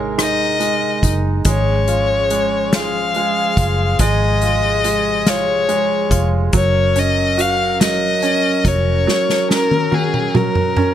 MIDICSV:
0, 0, Header, 1, 6, 480
1, 0, Start_track
1, 0, Tempo, 846262
1, 825, Time_signature, 6, 3, 24, 8
1, 6206, End_track
2, 0, Start_track
2, 0, Title_t, "Violin"
2, 0, Program_c, 0, 40
2, 119, Note_on_c, 0, 75, 85
2, 629, Note_off_c, 0, 75, 0
2, 843, Note_on_c, 0, 73, 80
2, 1560, Note_on_c, 0, 77, 86
2, 1568, Note_off_c, 0, 73, 0
2, 2273, Note_off_c, 0, 77, 0
2, 2278, Note_on_c, 0, 75, 87
2, 2999, Note_on_c, 0, 73, 91
2, 3007, Note_off_c, 0, 75, 0
2, 3533, Note_off_c, 0, 73, 0
2, 3719, Note_on_c, 0, 73, 85
2, 3962, Note_on_c, 0, 75, 92
2, 3970, Note_off_c, 0, 73, 0
2, 4200, Note_on_c, 0, 77, 90
2, 4208, Note_off_c, 0, 75, 0
2, 4432, Note_off_c, 0, 77, 0
2, 4435, Note_on_c, 0, 75, 93
2, 4919, Note_on_c, 0, 73, 81
2, 4928, Note_off_c, 0, 75, 0
2, 5393, Note_off_c, 0, 73, 0
2, 5396, Note_on_c, 0, 70, 85
2, 5640, Note_on_c, 0, 68, 78
2, 5649, Note_off_c, 0, 70, 0
2, 5874, Note_on_c, 0, 70, 71
2, 5883, Note_off_c, 0, 68, 0
2, 6206, Note_off_c, 0, 70, 0
2, 6206, End_track
3, 0, Start_track
3, 0, Title_t, "Grand piano"
3, 0, Program_c, 1, 0
3, 0, Control_c, 1, 64, 127
3, 0, Note_on_c, 1, 56, 50
3, 0, Note_on_c, 1, 63, 48
3, 93, Note_off_c, 1, 63, 0
3, 101, Note_on_c, 1, 63, 50
3, 331, Note_off_c, 1, 56, 0
3, 339, Note_on_c, 1, 56, 46
3, 578, Note_off_c, 1, 63, 0
3, 587, Note_on_c, 1, 63, 50
3, 808, Note_off_c, 1, 56, 0
3, 818, Note_off_c, 1, 63, 0
3, 826, Note_on_c, 1, 56, 58
3, 831, Control_c, 1, 64, 0
3, 948, Control_c, 1, 64, 127
3, 1066, Note_on_c, 1, 65, 45
3, 1300, Note_off_c, 1, 56, 0
3, 1309, Note_on_c, 1, 56, 53
3, 1541, Note_off_c, 1, 65, 0
3, 1550, Note_on_c, 1, 65, 47
3, 1785, Note_off_c, 1, 56, 0
3, 1794, Note_on_c, 1, 56, 50
3, 2020, Note_off_c, 1, 65, 0
3, 2028, Note_on_c, 1, 65, 52
3, 2261, Note_off_c, 1, 56, 0
3, 2270, Note_on_c, 1, 56, 59
3, 2502, Note_off_c, 1, 65, 0
3, 2510, Note_on_c, 1, 65, 44
3, 2739, Note_off_c, 1, 56, 0
3, 2748, Note_on_c, 1, 56, 53
3, 2977, Note_off_c, 1, 65, 0
3, 2985, Note_on_c, 1, 65, 56
3, 3216, Note_off_c, 1, 56, 0
3, 3225, Note_on_c, 1, 56, 58
3, 3456, Note_off_c, 1, 65, 0
3, 3464, Note_on_c, 1, 65, 52
3, 3691, Note_off_c, 1, 56, 0
3, 3698, Note_off_c, 1, 65, 0
3, 3706, Note_on_c, 1, 54, 65
3, 3713, Control_c, 1, 64, 0
3, 3798, Control_c, 1, 64, 127
3, 3948, Note_on_c, 1, 61, 52
3, 4185, Note_on_c, 1, 66, 56
3, 4417, Note_off_c, 1, 54, 0
3, 4426, Note_on_c, 1, 54, 51
3, 4658, Note_off_c, 1, 61, 0
3, 4666, Note_on_c, 1, 61, 58
3, 4898, Note_off_c, 1, 54, 0
3, 4906, Note_on_c, 1, 54, 52
3, 5123, Note_off_c, 1, 66, 0
3, 5137, Note_off_c, 1, 54, 0
3, 5145, Note_on_c, 1, 54, 67
3, 5375, Note_off_c, 1, 61, 0
3, 5383, Note_on_c, 1, 61, 51
3, 5623, Note_on_c, 1, 66, 54
3, 5858, Note_off_c, 1, 54, 0
3, 5866, Note_on_c, 1, 54, 52
3, 6100, Note_off_c, 1, 61, 0
3, 6108, Note_on_c, 1, 61, 60
3, 6206, Note_off_c, 1, 54, 0
3, 6206, Note_off_c, 1, 61, 0
3, 6206, Note_off_c, 1, 66, 0
3, 6206, End_track
4, 0, Start_track
4, 0, Title_t, "Woodwind section"
4, 0, Program_c, 2, 71
4, 0, Note_on_c, 2, 48, 65
4, 0, Note_on_c, 2, 56, 73
4, 0, Note_on_c, 2, 70, 75
4, 726, Note_off_c, 2, 48, 0
4, 726, Note_off_c, 2, 56, 0
4, 726, Note_off_c, 2, 70, 0
4, 822, Note_on_c, 2, 53, 73
4, 825, Note_on_c, 2, 61, 63
4, 826, Note_on_c, 2, 68, 76
4, 2252, Note_off_c, 2, 61, 0
4, 2269, Note_on_c, 2, 48, 70
4, 3683, Note_off_c, 2, 53, 0
4, 3685, Note_off_c, 2, 68, 0
4, 3694, Note_off_c, 2, 48, 0
4, 3707, Note_on_c, 2, 70, 86
4, 3709, Note_on_c, 2, 61, 69
4, 3710, Note_on_c, 2, 54, 82
4, 6206, Note_off_c, 2, 54, 0
4, 6206, Note_off_c, 2, 61, 0
4, 6206, Note_off_c, 2, 70, 0
4, 6206, End_track
5, 0, Start_track
5, 0, Title_t, "Fingered electric bass"
5, 0, Program_c, 3, 33
5, 0, Note_on_c, 3, 32, 85
5, 560, Note_off_c, 3, 32, 0
5, 583, Note_on_c, 3, 30, 68
5, 810, Note_off_c, 3, 30, 0
5, 822, Note_on_c, 3, 32, 77
5, 2001, Note_off_c, 3, 32, 0
5, 2025, Note_on_c, 3, 30, 83
5, 2251, Note_off_c, 3, 30, 0
5, 2265, Note_on_c, 3, 32, 86
5, 3443, Note_off_c, 3, 32, 0
5, 3464, Note_on_c, 3, 29, 91
5, 3691, Note_off_c, 3, 29, 0
5, 3704, Note_on_c, 3, 30, 91
5, 4883, Note_off_c, 3, 30, 0
5, 4905, Note_on_c, 3, 29, 99
5, 5132, Note_off_c, 3, 29, 0
5, 6206, End_track
6, 0, Start_track
6, 0, Title_t, "Drums"
6, 106, Note_on_c, 9, 37, 89
6, 107, Note_on_c, 9, 42, 71
6, 163, Note_off_c, 9, 37, 0
6, 163, Note_off_c, 9, 42, 0
6, 343, Note_on_c, 9, 42, 42
6, 399, Note_off_c, 9, 42, 0
6, 584, Note_on_c, 9, 36, 73
6, 586, Note_on_c, 9, 42, 79
6, 640, Note_off_c, 9, 36, 0
6, 643, Note_off_c, 9, 42, 0
6, 820, Note_on_c, 9, 42, 80
6, 824, Note_on_c, 9, 36, 92
6, 877, Note_off_c, 9, 42, 0
6, 881, Note_off_c, 9, 36, 0
6, 1064, Note_on_c, 9, 42, 53
6, 1121, Note_off_c, 9, 42, 0
6, 1307, Note_on_c, 9, 42, 67
6, 1363, Note_off_c, 9, 42, 0
6, 1547, Note_on_c, 9, 38, 93
6, 1547, Note_on_c, 9, 42, 70
6, 1603, Note_off_c, 9, 38, 0
6, 1604, Note_off_c, 9, 42, 0
6, 1783, Note_on_c, 9, 42, 44
6, 1839, Note_off_c, 9, 42, 0
6, 2025, Note_on_c, 9, 36, 81
6, 2026, Note_on_c, 9, 42, 83
6, 2082, Note_off_c, 9, 36, 0
6, 2083, Note_off_c, 9, 42, 0
6, 2263, Note_on_c, 9, 42, 87
6, 2266, Note_on_c, 9, 36, 92
6, 2320, Note_off_c, 9, 42, 0
6, 2322, Note_off_c, 9, 36, 0
6, 2504, Note_on_c, 9, 42, 52
6, 2561, Note_off_c, 9, 42, 0
6, 2746, Note_on_c, 9, 42, 69
6, 2803, Note_off_c, 9, 42, 0
6, 2986, Note_on_c, 9, 38, 88
6, 2987, Note_on_c, 9, 42, 74
6, 3043, Note_off_c, 9, 38, 0
6, 3043, Note_off_c, 9, 42, 0
6, 3226, Note_on_c, 9, 42, 46
6, 3283, Note_off_c, 9, 42, 0
6, 3465, Note_on_c, 9, 36, 78
6, 3468, Note_on_c, 9, 42, 79
6, 3522, Note_off_c, 9, 36, 0
6, 3524, Note_off_c, 9, 42, 0
6, 3702, Note_on_c, 9, 42, 80
6, 3705, Note_on_c, 9, 36, 97
6, 3759, Note_off_c, 9, 42, 0
6, 3762, Note_off_c, 9, 36, 0
6, 3946, Note_on_c, 9, 42, 59
6, 4003, Note_off_c, 9, 42, 0
6, 4189, Note_on_c, 9, 42, 65
6, 4246, Note_off_c, 9, 42, 0
6, 4429, Note_on_c, 9, 38, 85
6, 4430, Note_on_c, 9, 42, 80
6, 4486, Note_off_c, 9, 38, 0
6, 4486, Note_off_c, 9, 42, 0
6, 4663, Note_on_c, 9, 42, 45
6, 4720, Note_off_c, 9, 42, 0
6, 4905, Note_on_c, 9, 36, 88
6, 4907, Note_on_c, 9, 42, 79
6, 4962, Note_off_c, 9, 36, 0
6, 4963, Note_off_c, 9, 42, 0
6, 5153, Note_on_c, 9, 38, 53
6, 5210, Note_off_c, 9, 38, 0
6, 5273, Note_on_c, 9, 38, 46
6, 5329, Note_off_c, 9, 38, 0
6, 5391, Note_on_c, 9, 38, 70
6, 5448, Note_off_c, 9, 38, 0
6, 5509, Note_on_c, 9, 48, 57
6, 5566, Note_off_c, 9, 48, 0
6, 5628, Note_on_c, 9, 48, 71
6, 5684, Note_off_c, 9, 48, 0
6, 5750, Note_on_c, 9, 47, 65
6, 5807, Note_off_c, 9, 47, 0
6, 5869, Note_on_c, 9, 47, 74
6, 5926, Note_off_c, 9, 47, 0
6, 5986, Note_on_c, 9, 45, 64
6, 6043, Note_off_c, 9, 45, 0
6, 6106, Note_on_c, 9, 45, 92
6, 6163, Note_off_c, 9, 45, 0
6, 6206, End_track
0, 0, End_of_file